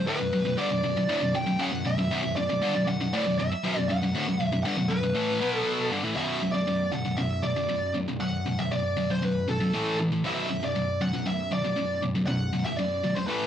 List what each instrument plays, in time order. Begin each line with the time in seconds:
0.07 distorted electric guitar D2 A2, lead electric guitar B4
0.20 distorted electric guitar B1 F#2
0.33 distorted electric guitar B1 F#2
0.46 distorted electric guitar B1 F#2
0.58 distorted electric guitar G2 D3, lead electric guitar D5
0.71 distorted electric guitar B1 F#2
0.83 distorted electric guitar B1 F#2
0.96 distorted electric guitar B1 F#2
1.09 distorted electric guitar D2 A2
1.22 distorted electric guitar B1 F#2
1.35 distorted electric guitar B1 F#2, lead electric guitar G5
1.47 distorted electric guitar B1 F#2
1.59 distorted electric guitar F#2 C#3, lead electric guitar F#5
1.72 distorted electric guitar B1 F#2
1.85 distorted electric guitar B1 F#2, lead electric guitar E5
1.98 distorted electric guitar B1 F#2
2.11 distorted electric guitar B1 F#2
2.24 distorted electric guitar B1 F#2
2.36 distorted electric guitar B1 F#2, lead electric guitar D5
2.49 distorted electric guitar B1 F#2
2.62 distorted electric guitar G2 D3
2.75 distorted electric guitar B1 F#2
2.87 distorted electric guitar B1 F#2, lead electric guitar F#5
3.01 distorted electric guitar B1 F#2
3.13 distorted electric guitar D2 A2, lead electric guitar D5
3.27 distorted electric guitar B1 F#2
3.39 distorted electric guitar B1 F#2, lead electric guitar E5
3.52 muted distorted electric guitar stroke
3.64 distorted electric guitar B1 F#2
3.77 distorted electric guitar B1 F#2
3.88 distorted electric guitar B1 F#2, lead electric guitar F#5
4.02 distorted electric guitar B1 F#2
4.14 distorted electric guitar D2 A2
4.27 distorted electric guitar B1 F#2
4.40 distorted electric guitar B1 F#2
4.46 lead electric guitar E5
4.52 distorted electric guitar B1 F#2
4.63 distorted electric guitar G2 D3, lead electric guitar F#5
4.78 distorted electric guitar B1 F#2
4.88 distorted electric guitar B1 F#2, lead electric guitar B4
5.03 distorted electric guitar B1 F#2
5.15 distorted electric guitar A2 E3 A3
5.41 distorted electric guitar B2 F#3 B3
5.57 lead electric guitar A4
5.91 distorted electric guitar G2 D3
6.03 distorted electric guitar A2 E3
6.16 distorted electric guitar B1 F#2 B2, lead electric guitar E5
6.42 distorted electric guitar B1 F#2
6.52 distorted electric guitar B1 F#2, lead electric guitar D5
6.67 distorted electric guitar B1 F#2
6.92 distorted electric guitar B1 F#2, lead electric guitar F#5
7.05 distorted electric guitar B1 F#2
7.17 distorted electric guitar B1 F#2, lead electric guitar E5
7.43 distorted electric guitar B1 F#2, lead electric guitar D5
7.56 distorted electric guitar B1 F#2
7.69 distorted electric guitar B1 F#2
7.94 distorted electric guitar B1 F#2
8.08 distorted electric guitar B1 F#2
8.20 distorted electric guitar B1 F#2, lead electric guitar F#5
8.46 distorted electric guitar B1 F#2
8.59 distorted electric guitar B1 F#2, lead electric guitar E5
8.71 distorted electric guitar B1 F#2, lead electric guitar D5
8.97 distorted electric guitar B1 F#2
9.10 distorted electric guitar B1 F#2, lead electric guitar C5
9.22 distorted electric guitar B1 F#2, lead electric guitar B4
9.48 distorted electric guitar B1 F#2, lead electric guitar A4
9.60 distorted electric guitar B1 F#2
9.73 distorted electric guitar A2 E3 A3
9.99 distorted electric guitar A2 E3
10.12 distorted electric guitar A2 E3
10.24 distorted electric guitar B1 F#2 B2, lead electric guitar E5
10.49 distorted electric guitar B1 F#2
10.62 distorted electric guitar B1 F#2, lead electric guitar D5
10.75 distorted electric guitar B1 F#2
11.01 distorted electric guitar B1 F#2, lead electric guitar F#5
11.14 distorted electric guitar B1 F#2
11.26 distorted electric guitar B1 F#2, lead electric guitar E5
11.52 distorted electric guitar B1 F#2, lead electric guitar D5
11.64 distorted electric guitar B1 F#2
11.77 distorted electric guitar B1 F#2
12.03 distorted electric guitar B1 F#2
12.15 distorted electric guitar B1 F#2
12.27 distorted electric guitar B1 F#2, lead electric guitar F#5
12.53 distorted electric guitar B1 F#2
12.65 distorted electric guitar B1 F#2, lead electric guitar E5
12.77 distorted electric guitar B1 F#2, lead electric guitar D5
13.03 distorted electric guitar B1 F#2
13.15 distorted electric guitar B1 F#2, lead electric guitar C5
13.27 distorted electric guitar A2 E3 A3, lead electric guitar B4